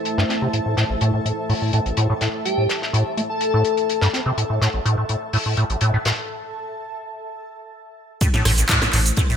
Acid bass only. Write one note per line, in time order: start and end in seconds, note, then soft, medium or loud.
0.18 0.24 G2 medium
0.29 0.36 C4 medium
0.42 0.48 C3 loud
0.53 0.60 A2 medium
0.66 0.75 A2 medium
0.77 0.84 A2 medium
0.90 0.96 A1 medium
1.01 1.12 A2 loud
1.14 1.20 A2 medium
1.25 1.32 A2 medium
1.49 1.53 A2 loud
1.62 1.71 A2 medium
1.73 1.80 A2 loud
1.86 1.92 A1 medium
1.97 2.08 A2 loud
2.10 2.14 A2 loud
2.21 2.28 A2 medium
2.58 2.67 A2 medium
2.93 3.04 A2 loud
3.17 3.21 A3 medium
3.54 3.63 A2 loud
4.02 4.08 G2 loud
4.13 4.20 C4 medium
4.26 4.32 C3 loud
4.37 4.44 A2 medium
4.50 4.59 A2 medium
4.61 4.68 A2 loud
4.74 4.80 A1 medium
4.85 4.96 A2 loud
4.98 5.04 A2 medium
5.09 5.16 A2 medium
5.33 5.37 A2 loud
5.46 5.55 A2 medium
5.57 5.64 A2 loud
5.70 5.76 A1 medium
5.81 5.92 A2 loud
5.94 5.98 A2 loud
6.05 6.12 A2 medium
8.21 8.28 A2 medium
8.34 8.43 A2 medium
8.45 8.52 A2 loud
8.58 8.64 A1 medium
8.69 8.79 A2 loud
8.82 8.88 A2 medium
8.93 9.00 A2 medium
9.17 9.21 A2 loud
9.30 9.37 A2 medium